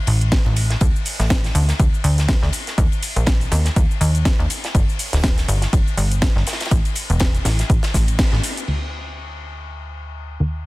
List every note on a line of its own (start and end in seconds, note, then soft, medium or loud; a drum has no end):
0.07 0.39 A1 loud
0.07 open hi-hat loud
0.07 ride medium
0.21 closed hi-hat soft
0.32 kick loud
0.32 snare loud
0.32 closed hi-hat medium
0.32 ride medium
0.46 0.76 A1 medium
0.46 ride soft
0.56 open hi-hat loud
0.56 ride medium
0.70 snare medium
0.70 closed hi-hat soft
0.81 0.91 D2 loud
0.81 kick loud
0.81 closed hi-hat medium
0.81 ride medium
0.81 shaker soft
0.96 shaker soft
1.05 open hi-hat medium
1.05 open hi-hat loud
1.05 shaker medium
1.20 1.50 A1 loud
1.20 snare soft
1.20 closed hi-hat soft
1.20 shaker soft
1.30 kick loud
1.30 snare loud
1.30 closed hi-hat medium
1.30 ride medium
1.30 shaker soft
1.44 snare medium
1.44 closed hi-hat soft
1.44 shaker soft
1.55 1.73 D2 loud
1.55 open hi-hat medium
1.55 ride medium
1.55 shaker medium
1.68 snare medium
1.68 closed hi-hat soft
1.68 shaker soft
1.79 1.89 D2 medium
1.79 kick loud
1.79 closed hi-hat medium
1.79 ride medium
1.79 shaker soft
1.94 shaker soft
2.04 2.36 D2 loud
2.04 open hi-hat loud
2.04 ride medium
2.04 shaker medium
2.18 snare soft
2.18 closed hi-hat medium
2.18 shaker soft
2.28 kick loud
2.28 snare loud
2.28 closed hi-hat medium
2.28 ride medium
2.28 shaker soft
2.42 2.50 D2 medium
2.42 snare soft
2.53 open hi-hat loud
2.53 ride medium
2.53 shaker medium
2.67 snare soft
2.67 closed hi-hat soft
2.67 shaker soft
2.78 2.88 D#2 loud
2.78 kick loud
2.78 closed hi-hat medium
2.78 ride medium
2.78 shaker soft
2.92 ride soft
2.92 shaker soft
3.03 open hi-hat loud
3.03 ride medium
3.03 shaker medium
3.16 3.46 A#1 medium
3.16 closed hi-hat medium
3.16 shaker soft
3.27 kick loud
3.27 snare loud
3.27 closed hi-hat medium
3.27 ride medium
3.27 shaker soft
3.41 closed hi-hat soft
3.41 shaker soft
3.52 3.70 D#2 loud
3.52 snare soft
3.52 open hi-hat medium
3.52 ride medium
3.52 shaker medium
3.65 snare soft
3.65 closed hi-hat medium
3.65 shaker soft
3.76 3.86 D#2 medium
3.76 kick loud
3.76 closed hi-hat medium
3.76 ride medium
3.76 shaker soft
3.91 shaker soft
4.01 4.32 D#2 loud
4.01 open hi-hat loud
4.01 ride medium
4.01 shaker medium
4.15 closed hi-hat medium
4.15 shaker soft
4.25 kick loud
4.25 snare loud
4.25 closed hi-hat medium
4.25 ride medium
4.25 shaker soft
4.39 4.47 D#2 loud
4.39 ride soft
4.50 open hi-hat medium
4.50 ride medium
4.50 shaker medium
4.64 snare medium
4.64 closed hi-hat medium
4.64 shaker soft
4.75 4.84 G1 loud
4.75 kick loud
4.75 closed hi-hat medium
4.75 ride medium
4.75 shaker soft
4.89 shaker soft
4.99 open hi-hat medium
4.99 open hi-hat loud
4.99 shaker medium
5.13 5.43 D1 medium
5.13 snare soft
5.13 closed hi-hat medium
5.13 shaker soft
5.24 kick loud
5.24 snare loud
5.24 closed hi-hat medium
5.24 ride medium
5.24 shaker soft
5.38 snare medium
5.38 closed hi-hat soft
5.38 shaker soft
5.48 5.66 G1 loud
5.48 open hi-hat medium
5.48 ride medium
5.48 shaker medium
5.62 snare medium
5.62 closed hi-hat medium
5.62 shaker soft
5.73 5.83 G1 medium
5.73 kick loud
5.73 closed hi-hat medium
5.73 ride loud
5.73 shaker soft
5.87 shaker soft
5.97 6.29 G1 loud
5.97 open hi-hat loud
5.97 shaker medium
6.11 closed hi-hat medium
6.11 shaker soft
6.22 kick loud
6.22 snare loud
6.22 closed hi-hat medium
6.22 ride loud
6.22 shaker soft
6.36 6.43 G1 loud
6.36 snare soft
6.47 snare medium
6.47 open hi-hat medium
6.47 ride medium
6.47 shaker medium
6.53 snare medium
6.53 ride medium
6.60 snare medium
6.60 closed hi-hat medium
6.60 ride medium
6.60 shaker soft
6.65 snare medium
6.65 ride medium
6.71 6.81 A1 loud
6.71 kick loud
6.71 closed hi-hat medium
6.71 ride medium
6.71 shaker soft
6.85 closed hi-hat soft
6.85 ride soft
6.85 shaker soft
6.95 open hi-hat loud
6.95 ride medium
6.95 shaker medium
7.10 7.40 E1 loud
7.10 closed hi-hat medium
7.10 shaker soft
7.20 kick loud
7.20 snare loud
7.20 closed hi-hat medium
7.20 ride medium
7.20 shaker soft
7.35 closed hi-hat soft
7.35 shaker soft
7.45 7.63 A1 loud
7.45 snare soft
7.45 snare loud
7.45 open hi-hat medium
7.45 ride medium
7.45 shaker medium
7.59 snare soft
7.59 closed hi-hat medium
7.59 shaker soft
7.70 7.79 A1 medium
7.70 kick loud
7.70 closed hi-hat medium
7.70 ride medium
7.70 shaker soft
7.83 snare loud
7.83 closed hi-hat soft
7.83 ride medium
7.83 shaker soft
7.94 8.26 A1 loud
7.94 kick medium
7.94 snare soft
7.94 open hi-hat loud
7.94 shaker medium
8.08 closed hi-hat medium
8.08 ride medium
8.08 shaker soft
8.19 kick loud
8.19 snare loud
8.19 closed hi-hat medium
8.19 ride medium
8.19 shaker soft
8.33 8.40 A1 loud
8.33 snare soft
8.44 open hi-hat medium
8.44 ride medium
8.44 shaker medium
8.57 closed hi-hat medium
8.57 shaker soft
8.68 10.38 D2 medium
8.68 crash medium
10.40 10.66 D#2 medium